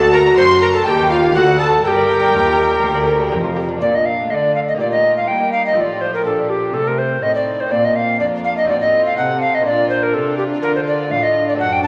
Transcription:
Already playing: lute D2, cello section D2, double bass section D2, viola section F#4, recorder A4, violin section A5
0.01 lute D5
0.12 lute A4, recorder A#4, violin section A#5
0.25 lute D4
0.37 double bass section F#1, cello section F#2, lute F#2 A4, recorder C5, violin section C6
0.50 lute G4
0.61 lute A4, recorder A#4, violin section A#5
0.74 lute D4, recorder A4, violin section A5
0.86 double bass section D#2, cello section D#2, lute D#2, viola section G4, recorder A4, violin section G5
0.90 recorder G4
0.98 lute A#4
1.10 lute D#4, recorder F4, violin section F5
1.23 lute A#3
1.35 cello section D2, double bass section D2, lute D2, recorder F#4, viola section A4, violin section F#5
1.47 lute D5
1.59 recorder A4, lute A4, violin section A5
1.72 lute D4
1.84 double bass section G1, lute G2, cello section G2, recorder G4 A4, viola section A#4, violin section G5
1.96 lute D5
2.09 lute G4
2.21 lute D4
2.33 double bass section D#2, lute D#2 G4, cello section D#2
2.45 lute F4
2.58 lute G4
2.70 lute D4
2.83 double bass section D2, lute D2 A#3, cello section D2
2.95 lute D5
3.07 lute G4
3.20 lute D4
3.32 double bass section F1, lute F2 G4, cello section F2
3.44 lute F4
3.56 lute G4
3.69 lute D4
3.76 lute A#3 D4 F4
3.81 lute A#2, cello section A#2, viola section A#3, violin section D4 F4, recorder D5
3.95 recorder D#5
4.06 recorder F5
4.30 lute D3, cello section D3, viola section A3, recorder D#5
4.34 recorder D5
4.55 recorder F5
4.68 recorder D#5
4.74 lute A#3 D#4 G4
4.79 lute A#2, cello section A#2, violin section F4 G4, recorder D5
4.91 recorder D#5
5.17 recorder F5
5.28 viola section G3, cello section A#3, lute A#3, violin section D#4 G4, recorder G5
5.52 recorder F5
5.66 recorder D#5
5.72 lute C4 D#4 F4
5.76 lute A2, cello section A2, viola section F3, violin section F4, recorder D#5
5.80 recorder D5
6.01 recorder C5
6.14 recorder A#4
6.25 cello section A#2, lute A#2, violin section D4, recorder A4
6.50 recorder G4
6.74 lute C3, cello section C3, viola section A3, violin section C4 F4, recorder A4
6.87 recorder A#4
6.98 recorder C5
7.23 lute A2, cello section A2, violin section C4 D#4, viola section C4, recorder D#5
7.35 recorder D5
7.60 recorder C5
7.66 lute A#3 D4 F4
7.71 lute A#2, cello section A#2, viola section A#3, violin section F4, recorder D5
7.85 recorder D#5
7.96 recorder F5
8.20 cello section F2, lute F2, violin section D4, recorder D5
8.44 recorder F5
8.57 recorder D#5
8.64 lute C4 D#4 F#4
8.69 cello section A2, lute A2, viola section C4, violin section F4, recorder D5
8.80 recorder D#5
9.06 recorder F5
9.17 cello section C3, lute C3, violin section D#4 A4, recorder F#5
9.41 recorder F5
9.55 recorder D#5
9.61 lute A#3 F4
9.65 lute A#2, cello section A#2, viola section D4, violin section F4 A#4, recorder D5
9.90 recorder C5
10.03 recorder A#4
10.14 lute C3, cello section C3, violin section F4, recorder A4
10.38 recorder G4
10.62 cello section D3, lute D3, violin section F4, recorder A#4
10.76 recorder C5
10.87 recorder D5
11.10 lute A2, cello section A2, viola section D4, violin section F4, recorder F5
11.23 recorder D#5
11.49 recorder D5
11.54 lute C4 D4 A4
11.59 cello section F#2, lute F#2, violin section F#4 A4, recorder F#5
11.73 recorder G5
11.84 recorder A5

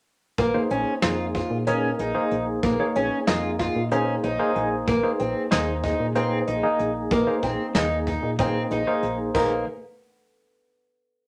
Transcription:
0.38 fm bass A#1, twelve-string acoustic guitar A#3, kick, closed hi-hat
0.54 tine electric piano A#3 D#4 G#4 C5
0.70 fm bass A#1, twelve-string acoustic guitar C#4, closed hi-hat
1.02 fm bass F2, tine electric piano A#3 D#4 G#4 C5, twelve-string acoustic guitar F4, snare, closed hi-hat
1.35 twelve-string acoustic guitar F4, kick, closed hi-hat
1.50 fm bass A#2
1.67 tine electric piano A#3 D#4 G#4 A#4, twelve-string acoustic guitar C#4, closed hi-hat
1.99 fm bass A#1, twelve-string acoustic guitar D#4, closed hi-hat
2.15 tine electric piano A#3 D#4 G#4 C5
2.31 fm bass A#1, closed hi-hat
2.63 fm bass A#1, twelve-string acoustic guitar A#3, kick, closed hi-hat
2.80 tine electric piano A#3 D#4 G#4 C#5
2.95 fm bass A#1, twelve-string acoustic guitar C#4, closed hi-hat
3.27 fm bass F2, tine electric piano A#3 D#4 G#4 D#5, twelve-string acoustic guitar F4, snare, closed hi-hat
3.59 twelve-string acoustic guitar F4, kick, snare, closed hi-hat
3.76 fm bass A#2
3.91 tine electric piano A#3 D#4 G#4 C5, twelve-string acoustic guitar C#4, closed hi-hat
4.23 fm bass A#1, twelve-string acoustic guitar D#4, tine electric piano C#5, closed hi-hat
4.39 tine electric piano A#3 D#4 G#4 C5
4.55 fm bass A#1, tine electric piano G#5, closed hi-hat
4.87 fm bass A#1, twelve-string acoustic guitar A#3, kick, closed hi-hat
5.03 tine electric piano A#3 D#4 G#4 C5
5.20 fm bass A#1, twelve-string acoustic guitar C4, closed hi-hat
5.51 fm bass D#2, tine electric piano A#3 D#4 G#4 C5, twelve-string acoustic guitar D#4, snare, closed hi-hat
5.84 twelve-string acoustic guitar D#4, kick, closed hi-hat
6.00 fm bass A#2
6.15 tine electric piano A#3 D#4 G#4 C5, twelve-string acoustic guitar C4, closed hi-hat
6.47 fm bass A#1, twelve-string acoustic guitar D#4, closed hi-hat
6.63 tine electric piano A#3 D#4 G#4 D#5
6.79 fm bass A#1, closed hi-hat
7.11 fm bass A#1, twelve-string acoustic guitar A#3, kick, closed hi-hat
7.27 tine electric piano A#3 D#4 G#4 C5
7.42 fm bass A#1, twelve-string acoustic guitar C4, kick, closed hi-hat
7.75 fm bass D#2, tine electric piano A#3 D#4 G#4 D#5, twelve-string acoustic guitar D#4, snare, closed hi-hat
8.07 twelve-string acoustic guitar D#4, kick, closed hi-hat
8.23 fm bass A#2
8.39 tine electric piano A#3 D#4 G#4 C5, twelve-string acoustic guitar C4, kick, closed hi-hat
8.71 fm bass A#1, twelve-string acoustic guitar D#4, closed hi-hat
8.87 tine electric piano A#3 D#4 G#4 C5
9.03 fm bass A#1, closed hi-hat
9.35 fm bass A#1, tine electric piano A#3 D#4 G#4 C5, twelve-string acoustic guitar A#3, kick, crash

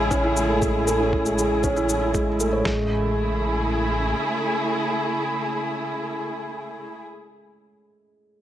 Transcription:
Already playing: detuned saw bass A1, string section C#3 E4 G#4, felt piano G#3 A3 C#4 E4 G#4
0.11 felt piano C#4, kick, shaker
0.23 felt piano E4
0.36 felt piano G#3, shaker
0.49 felt piano A3
0.61 felt piano G#3, kick, shaker
0.87 felt piano A3, shaker
1.00 felt piano C#4
1.12 felt piano E4, kick
1.25 felt piano G#3, shaker
1.38 felt piano G#4, shaker
1.64 felt piano C#4, kick, shaker
1.76 felt piano E4, shaker
1.89 felt piano E4, shaker
2.02 felt piano E4
2.14 felt piano G#3, kick, shaker
2.40 felt piano A3, shaker
2.53 felt piano C#5
2.65 detuned saw bass A1, string section C#3, felt piano G#3, kick, snare
2.73 string section A3
2.81 string section E4
2.88 string section G#4

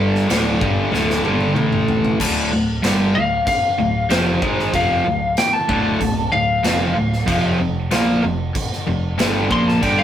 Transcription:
Already playing: picked electric bass G1, overdriven electric guitar G2 D3 G3
0.15 snare
0.28 picked electric bass D1, overdriven electric guitar D2 A2 D3, snare, crash
0.60 picked electric bass G1, overdriven electric guitar G2 D3 G3, kick
0.92 picked electric bass D1, overdriven electric guitar D2 A2 D3, snare
1.10 snare
1.23 picked electric bass G1, overdriven electric guitar G2 D3 G3, high tom
1.41 high tom
1.55 picked electric bass A1, overdriven electric guitar A2 E3 A3, mid tom
1.73 mid tom
1.88 floor tom
2.05 floor tom
2.20 picked electric bass D1, overdriven electric guitar D2 A2 D3, kick, crash
2.52 picked electric bass D1, overdriven electric guitar D2 A2
2.83 picked electric bass G1, overdriven electric guitar G2 D3 G3, snare, crash
3.15 picked electric bass D1, overdriven electric guitar D2 A2, lead electric guitar F5
3.47 lead electric guitar F5, muted overdriven electric guitar stroke, kick, crash
3.78 picked electric bass D1, overdriven electric guitar D2 A2
4.09 picked electric bass F1, overdriven electric guitar F2 C3 F3, lead electric guitar C5, snare, crash
4.41 picked electric bass G#1, overdriven electric guitar G#2 D#3 G#3, kick
4.60 snare
4.74 picked electric bass F1, overdriven electric guitar F2 C3 F3, lead electric guitar F5, kick, crash
5.05 picked electric bass D1, overdriven electric guitar D2 A2
5.37 lead electric guitar G5, snare, crash
5.53 lead electric guitar A5
5.68 picked electric bass D1, overdriven electric guitar D2 A2 D3, kick
6.00 picked electric bass D1, overdriven electric guitar D2 A2, kick, crash
6.32 picked electric bass D1, overdriven electric guitar D2 A2, lead electric guitar F5
6.63 picked electric bass F1, overdriven electric guitar F2 C3 F3, snare, crash
6.95 picked electric bass D1, overdriven electric guitar D2 A2
7.13 snare
7.27 picked electric bass F1, overdriven electric guitar F2 C3 F3, kick, crash
7.59 picked electric bass F1, overdriven electric guitar F2 C3
7.91 picked electric bass A#1, overdriven electric guitar A#2 F3 A#3, snare, crash
8.23 picked electric bass F1, overdriven electric guitar F2 C3
8.55 muted overdriven electric guitar stroke, kick, crash
8.72 snare
8.87 picked electric bass F1, overdriven electric guitar F2 C3
9.18 picked electric bass G1, overdriven electric guitar G2 D3 G3, snare, crash
9.49 picked electric bass A#1, overdriven electric guitar A#2 F3 A#3, lead electric guitar C6, kick
9.68 lead electric guitar A5, snare
9.82 picked electric bass G1, overdriven electric guitar G2 D3 G3, lead electric guitar G5, kick, crash
9.99 lead electric guitar F5

